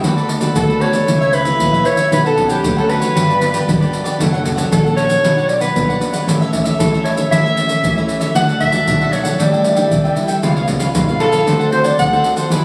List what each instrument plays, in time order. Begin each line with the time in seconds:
0.03 fingered electric bass D2, nylon-string guitar D3 A3 B3 F#4, cavaquinho F#4 A4 B4 D5, pandeiro, maracas, surdo
0.17 cavaquinho A4 B4 D5, pandeiro, maracas
0.29 muted cavaquinho stroke, pandeiro, maracas
0.40 nylon-string guitar A3 B3 F#4, cavaquinho A4 B4 D5, pandeiro, maracas
0.55 fingered electric bass D2, nylon-string guitar A2, cavaquinho F#4 A4 B4 D5, soprano saxophone A4, pandeiro, maracas, surdo
0.69 cavaquinho A4 B4 D5, pandeiro, maracas
0.80 nylon-string guitar A3 B3 F#4, cavaquinho F#4 A4 B4 D5, soprano saxophone C#5, pandeiro
0.92 cavaquinho A4 B4 D5, pandeiro, maracas
1.07 fingered electric bass C#2, nylon-string guitar C#3 E3 A3 E4, cavaquinho E4 A4 C#5 E5, pandeiro, maracas, surdo
1.21 cavaquinho A4 C#5 E5, pandeiro, maracas
1.33 soprano saxophone B4, muted cavaquinho stroke, pandeiro, maracas
1.44 nylon-string guitar E3 A3 E4, cavaquinho A4 C#5 E5, pandeiro, maracas
1.60 fingered electric bass A#1, nylon-string guitar C#3, pandeiro, maracas, surdo
1.72 cavaquinho A4 C#5 E5, pandeiro, maracas
1.85 nylon-string guitar E3 A3 E4, soprano saxophone C#5, pandeiro, maracas
1.96 cavaquinho A4 C#5 E5, pandeiro, maracas
2.11 fingered electric bass B1, nylon-string guitar B2 F#3 B3 C#4, cavaquinho F#4 B4 C#5 F#5, soprano saxophone B4, pandeiro, maracas, surdo
2.24 soprano saxophone A4, cavaquinho B4 C#5 F#5, pandeiro, maracas
2.36 nylon-string guitar F#3 B3 C#4, muted cavaquinho stroke, pandeiro, surdo
2.48 soprano saxophone G4, cavaquinho B4 C#5 F#5, pandeiro, maracas
2.63 fingered electric bass D2, nylon-string guitar F#2, cavaquinho F#4 B4 C#5 F#5, pandeiro, maracas, surdo
2.77 nylon-string guitar F#3 B3 C#4, soprano saxophone A4, cavaquinho B4 C#5 F#5, pandeiro, maracas
2.88 cavaquinho F#4 B4 C#5 F#5, soprano saxophone B4, pandeiro
3.00 cavaquinho B4 C#5 F#5, pandeiro, maracas
3.15 fingered electric bass G1, nylon-string guitar G2 F#3 B3 D4, cavaquinho F#4 G4 B4 D5, pandeiro, maracas, surdo
3.29 cavaquinho G4 B4 D5, pandeiro, maracas
3.40 nylon-string guitar F#3 B3 D4, muted cavaquinho stroke, pandeiro, maracas
3.52 cavaquinho G4 B4 D5, pandeiro, maracas
3.68 fingered electric bass G1, nylon-string guitar D3, pandeiro, maracas, surdo
3.81 nylon-string guitar F#3 B3 D4, cavaquinho G4 B4 D5, pandeiro, maracas
3.93 pandeiro, maracas
4.04 cavaquinho G4 B4 D5, pandeiro, maracas
4.19 fingered electric bass F#1, nylon-string guitar F#3 C#4 D4 A4, cavaquinho D4 A4 C#5 F#5, pandeiro, maracas, surdo
4.33 nylon-string guitar C#4 D4 A4, cavaquinho A4 C#5 F#5, pandeiro, maracas
4.44 nylon-string guitar C#4 D4 A4, muted cavaquinho stroke, pandeiro, maracas, surdo
4.56 cavaquinho A4 C#5 F#5, pandeiro, maracas
4.71 fingered electric bass A#1, nylon-string guitar F#3, cavaquinho D4 A4 C#5 F#5, soprano saxophone A4, pandeiro, maracas, surdo
4.84 nylon-string guitar C#4 D4 A4, cavaquinho A4 C#5 F#5, pandeiro, maracas
4.96 cavaquinho D4 A4 C#5 F#5, soprano saxophone C#5, pandeiro, maracas
5.08 cavaquinho A4 C#5 F#5, pandeiro, maracas
5.23 fingered electric bass B1, nylon-string guitar B2 F#3 B3 D4, cavaquinho D4 B4 D5 F#5, pandeiro, maracas, surdo
5.37 cavaquinho B4 D5 F#5, pandeiro, maracas
5.48 soprano saxophone D5, muted cavaquinho stroke, pandeiro, maracas
5.60 soprano saxophone B4, cavaquinho B4 D5 F#5, pandeiro, maracas
5.75 fingered electric bass B1, nylon-string guitar F#2 F#3 B3 D4, pandeiro, maracas, surdo
5.89 cavaquinho B4 D5 F#5, pandeiro, maracas
6.00 nylon-string guitar F#3 B3 D4, pandeiro, maracas
6.13 cavaquinho B4 D5 F#5, pandeiro, maracas
6.27 fingered electric bass A1, nylon-string guitar A2 E3 A3 C#4, cavaquinho E4 A4 C#5 E5, pandeiro, maracas, surdo
6.41 cavaquinho A4 C#5 E5, pandeiro, maracas
6.52 nylon-string guitar E3 A3 C#4, muted cavaquinho stroke, pandeiro, maracas, surdo
6.64 cavaquinho A4 C#5 E5, pandeiro, maracas
6.78 fingered electric bass A1, nylon-string guitar E3, cavaquinho E4 C#5 E5, soprano saxophone A4, pandeiro, maracas, surdo
6.92 nylon-string guitar E3 A3 C#4, cavaquinho A4 C#5 E5, pandeiro, maracas
7.04 cavaquinho E4 A4 C#5 E5, soprano saxophone C#5, pandeiro
7.16 cavaquinho A4 C#5 E5, pandeiro, maracas
7.31 fingered electric bass A1, nylon-string guitar A2 E3 A3 C#4, cavaquinho E4 A4 C#5 E5, soprano saxophone E5, pandeiro, maracas, surdo
7.45 cavaquinho A4 C#5 E5, pandeiro, maracas
7.56 nylon-string guitar E3 A3 C#4, muted cavaquinho stroke, pandeiro, maracas
7.67 cavaquinho A4 C#5 E5, pandeiro, maracas
7.83 fingered electric bass A1, nylon-string guitar E3, pandeiro, maracas, surdo
7.96 nylon-string guitar E3 A3 C#4, cavaquinho A4 C#5 E5, pandeiro, maracas
8.09 pandeiro, maracas
8.20 cavaquinho A4 C#5 E5, pandeiro, maracas
8.35 fingered electric bass D2, nylon-string guitar D3 F#3 A3 D4, cavaquinho D4 A4 D5 F#5, soprano saxophone F#5, pandeiro, maracas, surdo
8.48 cavaquinho A4 D5 F#5, pandeiro, maracas
8.60 soprano saxophone E5, muted cavaquinho stroke, pandeiro, surdo
8.72 nylon-string guitar F#3 A3 D4, cavaquinho A4 D5 F#5, pandeiro, maracas
8.87 fingered electric bass B1, nylon-string guitar A2, cavaquinho D4 A4 D5 F#5, pandeiro, maracas, surdo
9.00 cavaquinho A4 D5 F#5, pandeiro, maracas
9.11 nylon-string guitar F#3 A3 D4, cavaquinho D4 A4 D5 F#5, soprano saxophone C#5, pandeiro, maracas
9.23 cavaquinho A4 D5 F#5, pandeiro, maracas
9.38 fingered electric bass A1, nylon-string guitar A2 G3 D4 E4, cavaquinho D4 A4 E5 G5, soprano saxophone D5, pandeiro, maracas, surdo
9.52 cavaquinho A4 E5 G5, pandeiro, maracas
9.63 muted cavaquinho stroke, pandeiro, maracas
9.75 nylon-string guitar G3 D4 E4, cavaquinho A4 E5 G5, pandeiro, maracas
9.91 fingered electric bass C2, nylon-string guitar E3, pandeiro, maracas, surdo
10.04 cavaquinho A4 E5 G5, pandeiro, maracas
10.16 nylon-string guitar G3 D4 E4, pandeiro, maracas
10.27 cavaquinho A4 E5 G5, pandeiro, maracas
10.42 fingered electric bass C#2, nylon-string guitar C#3 G#3 B3 F4, cavaquinho F4 B4 C#5 F5, pandeiro, maracas, surdo
10.56 cavaquinho B4 C#5 F5, pandeiro, maracas
10.67 nylon-string guitar G#3 B3 F4, muted cavaquinho stroke, pandeiro, maracas, surdo
10.79 cavaquinho B4 C#5 F5, pandeiro, maracas
10.94 fingered electric bass B1, nylon-string guitar G#2, cavaquinho F4 B4 C#5 F5, pandeiro, maracas, surdo
11.08 nylon-string guitar G#3 B3 F4, cavaquinho B4 C#5 F5, pandeiro, maracas
11.19 cavaquinho F4 B4 C#5 F5, soprano saxophone A4, pandeiro
11.31 cavaquinho B4 C#5 F5, pandeiro, maracas
11.46 fingered electric bass D2, nylon-string guitar D3 C4 F#4 A4, cavaquinho D4 C5 D5 F#5, pandeiro, maracas, surdo
11.59 cavaquinho C5 D5 F#5, pandeiro, maracas
11.71 nylon-string guitar C4 F#4 A4, soprano saxophone C5, muted cavaquinho stroke, pandeiro
11.83 cavaquinho C5 D5 F#5, soprano saxophone D5, pandeiro, maracas
11.98 fingered electric bass D2, nylon-string guitar A2, soprano saxophone F#5, pandeiro, maracas, surdo
12.12 nylon-string guitar C4 F#4 A4, cavaquinho C5 D5 F#5, pandeiro, maracas
12.24 pandeiro, maracas
12.35 cavaquinho C5 D5 F#5, pandeiro, maracas
12.50 fingered electric bass E2, nylon-string guitar E3 B3 D4 G#4, cavaquinho E4 G#4 B4 D5, pandeiro, maracas, surdo